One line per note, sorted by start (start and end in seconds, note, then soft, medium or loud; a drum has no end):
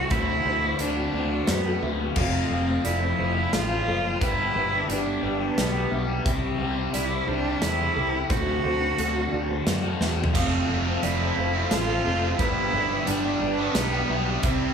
0.00 0.10 G3 medium
0.00 0.12 C4 medium
0.00 0.13 F#4 loud
0.00 0.11 A4 medium
0.00 4.16 A5 medium
0.00 4.17 C6 medium
0.10 0.38 D2 loud
0.10 0.44 D3 loud
0.10 0.46 A3 medium
0.10 0.46 C4 loud
0.10 0.82 E4 loud
0.10 2.14 F#4 medium
0.10 0.47 F#4 loud
0.10 0.44 C5 medium
0.10 2.14 D5 medium
0.10 kick loud
0.10 closed hi-hat medium
0.45 0.72 D2 medium
0.45 0.78 D3 medium
0.45 0.65 A3 medium
0.45 0.63 C4 medium
0.45 0.61 F#4 medium
0.45 1.14 C5 medium
0.62 0.80 A3 medium
0.62 0.81 C4 medium
0.62 0.81 F#4 medium
0.79 1.06 D2 medium
0.79 1.12 D3 medium
0.79 0.98 A3 medium
0.79 0.96 C4 medium
0.79 1.50 D4 loud
0.79 0.94 F#4 medium
0.79 closed hi-hat medium
0.96 1.13 A3 medium
0.96 1.14 C4 medium
0.96 1.14 F#4 medium
1.13 1.40 D2 medium
1.13 1.64 D3 medium
1.13 1.32 A3 medium
1.13 1.31 C4 medium
1.13 1.29 F#4 medium
1.13 1.82 D5 medium
1.30 1.67 A3 medium
1.30 1.65 C4 medium
1.30 1.63 F#4 medium
1.47 1.75 F#2 medium
1.47 2.00 B3 loud
1.47 snare medium
1.47 closed hi-hat medium
1.65 1.82 A3 medium
1.65 1.82 C4 medium
1.65 1.83 F#4 medium
1.81 2.09 D2 loud
1.81 2.14 D3 medium
1.81 2.01 A3 medium
1.81 1.99 C4 medium
1.81 1.97 F#4 medium
1.81 2.16 E5 medium
1.98 2.16 A3 medium
1.98 2.14 C4 medium
1.98 2.14 F#4 medium
2.15 2.43 F1 loud
2.15 2.49 F3 medium
2.15 4.19 F3 medium
2.15 2.50 A3 loud
2.15 2.87 C4 loud
2.15 2.51 C4 loud
2.15 2.51 F4 loud
2.15 4.19 C5 medium
2.15 2.84 F5 medium
2.15 kick loud
2.15 crash loud
2.50 2.77 F1 medium
2.50 2.82 F3 medium
2.50 2.69 A3 medium
2.50 2.67 C4 medium
2.50 2.65 F4 medium
2.67 2.85 A3 medium
2.67 2.85 C4 medium
2.67 2.85 F4 medium
2.84 3.11 F1 medium
2.84 3.16 F3 medium
2.84 3.03 A3 medium
2.84 3.01 C4 loud
2.84 3.55 E4 medium
2.84 2.99 F4 loud
2.84 3.18 D5 medium
2.84 closed hi-hat medium
3.00 3.18 A3 medium
3.00 3.18 C4 medium
3.00 3.19 F4 medium
3.17 3.45 F1 medium
3.17 3.69 F3 medium
3.17 3.38 A3 medium
3.17 3.35 C4 medium
3.17 3.34 F4 medium
3.17 3.53 C5 medium
3.35 3.71 A3 medium
3.35 3.69 C4 medium
3.35 3.68 F4 medium
3.53 3.79 A1 medium
3.53 4.23 F4 loud
3.53 3.85 A4 medium
3.53 snare medium
3.53 closed hi-hat medium
3.69 3.86 A3 medium
3.69 3.86 C4 medium
3.69 3.87 F4 medium
3.86 4.14 F#1 loud
3.86 4.18 F3 medium
3.86 4.05 A3 medium
3.86 4.03 C4 medium
3.86 4.01 F4 medium
3.86 4.21 A4 medium
4.02 4.20 A3 medium
4.02 4.19 C4 medium
4.02 4.18 F4 medium
4.19 4.48 G1 loud
4.19 4.86 G2 loud
4.19 4.87 D3 loud
4.19 4.53 G3 loud
4.19 4.54 B3 loud
4.19 4.55 D4 loud
4.19 4.91 E4 loud
4.19 8.26 G4 medium
4.19 4.56 G4 loud
4.19 4.53 B4 medium
4.19 6.23 D5 medium
4.19 14.74 A5 medium
4.19 6.23 B5 loud
4.19 kick loud
4.19 closed hi-hat medium
4.54 4.82 G1 loud
4.54 4.73 G3 medium
4.54 4.71 B3 medium
4.54 4.71 D4 medium
4.54 4.70 G4 medium
4.54 5.23 B4 medium
4.71 4.88 G3 medium
4.71 4.88 B3 medium
4.71 4.89 D4 medium
4.71 4.90 G4 medium
4.87 5.16 G1 medium
4.87 5.39 G2 medium
4.87 5.40 D3 medium
4.87 5.06 G3 loud
4.87 5.05 B3 loud
4.87 5.59 D4 medium
4.87 5.04 D4 loud
4.87 5.03 G4 loud
4.87 closed hi-hat medium
5.04 5.20 G3 medium
5.04 5.22 B3 medium
5.04 5.22 D4 medium
5.04 5.23 G4 medium
5.21 5.50 G1 medium
5.21 5.40 G3 medium
5.21 5.39 B3 medium
5.21 5.38 D4 medium
5.21 5.37 G4 loud
5.21 5.91 D5 medium
5.38 5.74 G3 medium
5.38 5.73 B3 medium
5.38 5.72 D4 medium
5.38 5.71 G4 medium
5.58 5.84 B1 loud
5.58 6.09 B3 loud
5.58 snare medium
5.58 closed hi-hat medium
5.72 5.88 G3 medium
5.72 5.90 B3 medium
5.72 5.90 D4 medium
5.72 5.91 G4 medium
5.89 6.18 B1 medium
5.89 6.09 G3 medium
5.89 6.08 B3 medium
5.89 6.07 D4 medium
5.89 6.06 G4 medium
5.89 6.24 E5 medium
6.07 6.24 G3 medium
6.07 6.24 B3 medium
6.07 6.23 D4 medium
6.07 6.23 G4 medium
6.24 6.52 C2 loud
6.24 6.91 C3 loud
6.24 6.57 G3 loud
6.24 6.59 C4 loud
6.24 6.96 C4 loud
6.24 6.59 E4 loud
6.24 6.60 G4 loud
6.24 6.94 E5 medium
6.24 8.28 E5 medium
6.24 8.28 C6 loud
6.24 kick loud
6.24 closed hi-hat medium
6.58 6.86 C2 medium
6.58 6.92 G3 medium
6.58 6.78 C4 medium
6.58 6.75 E4 loud
6.58 6.74 G4 loud
6.75 6.94 C4 medium
6.75 6.94 E4 medium
6.75 6.94 G4 medium
6.93 7.20 C2 medium
6.93 7.44 C3 medium
6.93 7.26 G3 loud
6.93 7.12 C4 medium
6.93 7.30 E4 medium
6.93 7.10 E4 loud
6.93 7.09 G4 loud
6.93 7.28 D5 medium
6.93 closed hi-hat medium
7.10 7.28 C4 medium
7.10 7.28 E4 medium
7.10 7.29 G4 medium
7.27 7.54 C2 medium
7.27 7.79 G3 medium
7.27 7.47 C4 medium
7.27 7.64 D4 loud
7.27 7.44 E4 loud
7.27 7.43 G4 medium
7.27 7.62 C5 medium
7.44 7.81 C4 medium
7.44 7.79 E4 medium
7.44 7.77 G4 medium
7.62 7.89 E2 loud
7.62 8.32 E4 loud
7.62 7.94 A4 medium
7.62 snare medium
7.62 closed hi-hat medium
7.79 7.96 C4 medium
7.79 7.97 E4 medium
7.79 7.97 G4 medium
7.95 8.23 C2 loud
7.95 8.28 G3 medium
7.95 8.15 C4 medium
7.95 8.13 E4 medium
7.95 8.11 G4 medium
7.95 8.30 A4 medium
8.12 8.31 C4 medium
8.12 8.29 E4 medium
8.12 8.28 G4 medium
8.29 8.57 D2 loud
8.29 8.62 D3 loud
8.29 8.64 A3 loud
8.29 8.65 C4 loud
8.29 10.33 F#4 medium
8.29 9.67 F#4 loud
8.29 8.65 F#4 loud
8.29 8.62 C5 medium
8.29 10.33 D5 medium
8.29 12.35 C6 medium
8.29 kick loud
8.29 closed hi-hat medium
8.63 8.91 D2 medium
8.63 8.96 D3 medium
8.63 8.83 A3 medium
8.63 8.81 C4 medium
8.63 8.79 F#4 medium
8.63 9.32 C5 medium
8.80 8.98 A3 medium
8.80 8.99 C4 medium
8.80 8.99 F#4 medium
8.97 9.25 D2 medium
8.97 9.30 D3 medium
8.97 9.16 A3 loud
8.97 9.14 C4 medium
8.97 9.13 F#4 loud
8.97 closed hi-hat medium
9.14 9.32 A3 medium
9.14 9.32 C4 medium
9.14 9.33 F#4 medium
9.31 9.59 D2 medium
9.31 9.83 D3 medium
9.31 9.51 A3 medium
9.31 9.49 C4 medium
9.31 9.47 F#4 medium
9.31 10.00 D5 medium
9.48 9.85 A3 medium
9.48 9.83 C4 medium
9.48 9.81 F#4 medium
9.67 9.93 F#2 medium
9.67 snare medium
9.67 closed hi-hat medium
9.82 10.00 A3 medium
9.82 10.01 C4 medium
9.82 10.01 F#4 medium
10.00 10.27 E2 medium
10.00 10.32 D3 medium
10.00 10.19 A3 medium
10.00 10.17 C4 medium
10.00 10.15 F#4 medium
10.00 10.35 E5 medium
10.00 snare medium
10.17 10.34 A3 medium
10.17 10.33 C4 medium
10.17 10.32 F#4 medium
10.24 floor tom loud
10.34 10.61 F1 loud
10.34 11.01 F2 medium
10.34 10.67 C3 medium
10.34 11.01 F3 loud
10.34 12.37 F3 medium
10.34 10.67 A3 medium
10.34 10.99 C4 loud
10.34 10.68 C4 medium
10.34 10.69 F4 medium
10.34 10.70 A4 loud
10.34 12.37 C5 medium
10.34 11.02 F5 medium
10.34 kick loud
10.34 closed hi-hat medium
10.34 crash loud
10.68 10.95 F1 medium
10.68 11.02 C3 medium
10.68 11.03 F3 medium
10.68 11.02 A3 medium
10.68 10.87 C4 medium
10.68 10.85 F4 medium
10.68 10.85 A4 medium
10.85 11.02 C4 medium
10.85 11.03 F4 medium
10.85 11.05 A4 medium
11.02 11.29 F1 medium
11.02 11.54 F2 medium
11.02 11.36 C3 loud
11.02 11.54 F3 medium
11.02 11.35 A3 medium
11.02 11.20 C4 loud
11.02 11.67 E4 medium
11.02 11.19 F4 medium
11.02 11.18 A4 medium
11.02 11.37 D5 medium
11.02 closed hi-hat medium
11.19 11.36 F3 medium
11.19 11.37 A3 medium
11.19 11.36 C4 medium
11.19 11.37 F4 medium
11.19 11.38 A4 medium
11.36 11.64 F1 medium
11.36 12.03 A3 medium
11.36 11.55 C4 medium
11.36 11.53 F4 medium
11.36 11.52 A4 medium
11.36 11.71 C5 medium
11.36 muted distorted electric guitar stroke medium
11.53 11.89 F3 medium
11.53 11.89 A3 medium
11.53 11.88 C4 medium
11.53 11.87 F4 medium
11.53 11.86 A4 medium
11.71 11.98 A1 medium
11.71 12.35 F4 loud
11.71 12.04 A4 medium
11.71 snare medium
11.71 closed hi-hat medium
11.87 12.04 F3 medium
11.87 12.06 A3 medium
11.87 12.04 C4 medium
11.87 12.04 F4 medium
11.87 12.06 A4 medium
12.03 12.32 F1 medium
12.03 12.37 C3 medium
12.03 12.23 F3 medium
12.03 12.39 A3 medium
12.03 12.23 C4 medium
12.03 12.22 F4 medium
12.03 12.39 A4 medium
12.03 12.21 A4 medium
12.21 12.38 F3 medium
12.21 12.40 A3 medium
12.21 12.38 C4 medium
12.21 12.38 F4 medium
12.21 12.40 A4 medium
12.38 12.66 G1 loud
12.38 13.04 G2 loud
12.38 13.05 D3 medium
12.38 12.72 G3 loud
12.38 14.74 G3 medium
12.38 12.72 B3 loud
12.38 12.73 D4 loud
12.38 13.08 E4 loud
12.38 12.74 G4 loud
12.38 12.72 B4 loud
12.38 14.42 D5 medium
12.38 14.42 B5 loud
12.38 kick loud
12.38 closed hi-hat medium
12.72 13.00 G1 loud
12.72 13.05 D3 medium
12.72 12.91 G3 medium
12.72 12.90 B3 medium
12.72 12.89 D4 medium
12.72 12.89 G4 medium
12.72 13.42 B4 medium
12.89 13.07 G3 medium
12.89 13.06 B3 medium
12.89 13.07 D4 medium
12.89 13.08 G4 medium
13.05 13.34 G1 medium
13.05 13.57 G2 medium
13.05 13.58 D3 loud
13.05 13.25 G3 medium
13.05 13.24 B3 loud
13.05 13.76 D4 loud
13.05 13.23 D4 medium
13.05 13.22 G4 loud
13.05 closed hi-hat medium
13.23 13.39 G3 medium
13.23 13.40 B3 medium
13.23 13.41 D4 medium
13.23 13.42 G4 medium
13.40 13.68 G1 medium
13.40 13.59 G3 medium
13.40 13.58 B3 medium
13.40 13.57 D4 medium
13.40 13.56 G4 medium
13.40 14.10 D5 medium
13.40 muted distorted electric guitar stroke medium
13.57 13.94 G3 medium
13.57 13.93 B3 medium
13.57 13.92 D4 medium
13.57 13.91 G4 medium
13.74 14.02 B1 medium
13.74 14.26 B3 loud
13.74 snare medium
13.74 closed hi-hat medium
13.92 14.07 G3 medium
13.92 14.08 B3 medium
13.92 14.09 D4 medium
13.92 14.10 G4 medium
14.08 14.36 B1 loud
14.08 14.41 D3 medium
14.08 14.27 G3 medium
14.08 14.26 B3 medium
14.08 14.25 D4 medium
14.08 14.24 G4 medium
14.08 14.41 E5 medium
14.25 14.42 G3 medium
14.25 14.42 B3 medium
14.25 14.41 D4 medium
14.25 14.41 G4 medium
14.42 14.70 C2 loud
14.42 14.74 C3 loud
14.42 14.74 G3 loud
14.42 14.74 C4 loud
14.42 14.74 E4 loud
14.42 14.74 G4 loud
14.42 14.74 E5 medium
14.42 14.74 C6 loud
14.42 kick loud
14.42 closed hi-hat medium